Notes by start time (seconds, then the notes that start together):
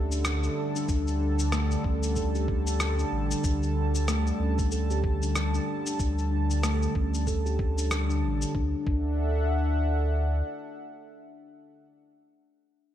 Already playing: D2 D3 G3 A4 E5 A5
0.12 D4, shaker
0.25 cross-stick, shaker
0.44 D4, shaker
0.75 D4, shaker
0.88 D2 D4, kick, shaker
1.08 shaker
1.20 D4
1.39 shaker
1.52 A3, cross-stick, shaker
1.71 shaker
1.84 D2 C#4, kick
2.03 shaker
2.16 A4, kick, shaker
2.35 G4, shaker
2.48 kick
2.67 D4, shaker
2.80 cross-stick, shaker
2.99 D4, shaker
3.12 A1
3.31 D4, shaker
3.44 D2 D4, kick, shaker
3.63 shaker
3.76 D4
3.95 shaker
4.08 A3, cross-stick, shaker
4.27 shaker
4.39 D2 C#4
4.59 kick, shaker
4.72 A4, shaker
4.91 G4, shaker
5.04 kick
5.22 D4, shaker
5.36 cross-stick, shaker
5.54 D4, shaker
5.86 D4, shaker
5.99 D2 D4, kick, shaker
6.19 shaker
6.31 D4
6.50 shaker
6.63 A3, cross-stick, shaker
6.83 shaker
6.95 D2 C#4, kick
7.14 shaker
7.27 A4, kick, shaker
7.46 G4, shaker
7.59 kick
7.78 D4, shaker
7.91 cross-stick, shaker
8.10 D4, shaker
8.23 A1
8.42 D4, shaker
8.55 D2 D4, kick
8.66 A4
8.77 E5
8.84 D2 D4 F#5, kick